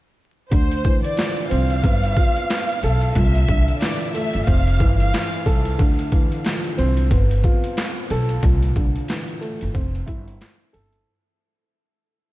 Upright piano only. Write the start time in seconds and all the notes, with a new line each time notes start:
0.51 D3
0.85 E3
1.17 F3
1.50 C4
1.84 B3
2.17 F4
2.84 A4
3.16 A#2
3.49 D3
3.82 E3
4.14 A3
4.47 C4
4.79 E3
5.46 A4
5.78 D3
6.12 E3
6.44 F3
6.78 C4
7.12 B3
7.44 F4
8.11 A4
8.44 A#2
8.76 D3
9.09 E3
9.41 A3
9.74 C4
10.06 E4
10.73 A4